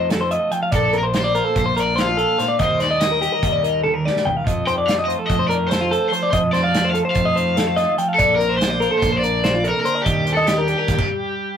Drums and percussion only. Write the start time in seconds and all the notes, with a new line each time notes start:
0.10 snare, closed hi-hat
0.31 closed hi-hat
0.52 closed hi-hat
0.72 kick, closed hi-hat
0.93 closed hi-hat
1.14 snare, closed hi-hat
1.35 closed hi-hat
1.56 kick, closed hi-hat
1.77 closed hi-hat
1.98 snare, closed hi-hat
2.19 closed hi-hat
2.39 snare, closed hi-hat
2.59 kick, closed hi-hat
2.80 snare, closed hi-hat
3.01 snare, closed hi-hat
3.22 closed hi-hat
3.43 kick, closed hi-hat
3.64 closed hi-hat
3.86 high tom
4.07 snare
4.16 snare
4.27 floor tom
4.47 kick, closed hi-hat
4.68 closed hi-hat
4.88 snare, closed hi-hat
5.10 closed hi-hat
5.30 kick, closed hi-hat
5.50 closed hi-hat
5.71 snare, closed hi-hat
5.93 closed hi-hat
6.13 closed hi-hat
6.33 kick, closed hi-hat
6.54 snare, closed hi-hat
6.74 snare, closed hi-hat
6.95 closed hi-hat
7.15 kick, closed hi-hat
7.37 closed hi-hat
7.57 snare, closed hi-hat
7.77 snare, closed hi-hat
7.98 closed hi-hat
8.19 kick, closed hi-hat
8.40 closed hi-hat
8.61 snare, closed hi-hat
8.82 closed hi-hat
9.02 kick, snare, closed hi-hat
9.24 closed hi-hat
9.44 snare, closed hi-hat
9.65 closed hi-hat
9.86 closed hi-hat
10.06 kick, closed hi-hat
10.27 closed hi-hat
10.47 snare, closed hi-hat
10.68 closed hi-hat
10.88 kick, snare, closed hi-hat
10.98 kick, crash